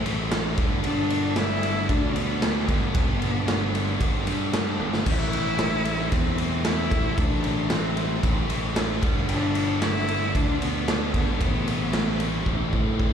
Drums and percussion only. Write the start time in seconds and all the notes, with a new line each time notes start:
0.06 ride
0.31 snare, ride
0.58 kick, ride
0.84 ride
1.10 ride
1.36 snare, ride
1.63 ride
1.89 kick, ride
2.16 ride
2.42 snare, ride
2.68 kick, ride
2.95 kick, ride
3.22 ride
3.48 snare, ride
3.75 ride
4.00 kick, ride
4.27 ride
4.53 snare, ride
4.80 high tom
4.93 snare
5.06 kick, ride, crash
5.33 ride
5.59 snare, ride
5.85 ride
6.12 kick, ride
6.38 ride
6.65 snare, ride
6.91 kick, ride
7.18 kick, ride
7.44 ride
7.70 snare, ride
7.97 ride
8.23 kick, ride
8.50 ride
8.76 snare, ride
9.03 kick, ride
9.29 ride
9.55 ride
9.82 snare, ride
10.08 ride
10.35 kick, ride
10.62 ride
10.88 snare, ride
11.14 kick, ride
11.41 kick, ride
11.68 ride
11.93 snare, ride
12.20 ride
12.46 kick
12.73 kick
13.00 kick